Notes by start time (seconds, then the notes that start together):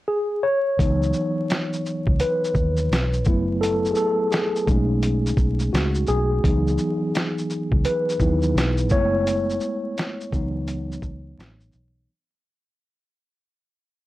0.08 G#4
0.43 C#5
0.79 C#2 E3 F#3 B3 D#4, kick, closed hi-hat, shaker
1.03 shaker
1.13 shaker
1.50 snare, closed hi-hat, shaker
1.73 shaker
1.86 shaker
2.07 C#2, kick
2.20 B4, closed hi-hat, shaker
2.45 shaker
2.55 D#2, kick, shaker
2.77 shaker
2.91 B1, snare, closed hi-hat, shaker
3.13 shaker
3.25 F#1 F#3 A3 B3 E4, kick, shaker
3.61 A4, closed hi-hat, shaker
3.85 shaker
3.91 G#4
3.95 A4, shaker
4.32 G#4, snare, closed hi-hat, shaker
4.56 shaker
4.67 B1 G#3 A3 C#4 D#4, kick, shaker
5.03 closed hi-hat, shaker
5.27 shaker
5.37 B1, kick, shaker
5.60 shaker
5.73 C#2 F#4, snare, closed hi-hat, shaker
5.95 shaker
6.07 B1 G#4, shaker
6.44 C#2 E3 F#3 B3 D#4, kick, closed hi-hat, shaker
6.67 shaker
6.78 shaker
7.15 snare, closed hi-hat, shaker
7.38 shaker
7.50 shaker
7.72 C#2, kick
7.85 B4, closed hi-hat, shaker
8.10 shaker
8.20 D#2 F#3 B3 D#4 E4, kick, shaker
8.42 shaker
8.55 B1, snare, closed hi-hat, shaker
8.78 shaker
8.89 F#1 G#3 A3 B3 E4 C#5, kick, shaker
9.27 closed hi-hat, shaker
9.50 shaker
9.61 shaker
9.98 snare, closed hi-hat, shaker
10.21 shaker
10.32 C#2 E3 F#3 B3 D#4, kick, shaker
10.68 closed hi-hat, shaker
10.92 shaker
11.02 C#2, kick, shaker
11.39 A1, snare, closed hi-hat, shaker
11.60 shaker
11.72 B1, shaker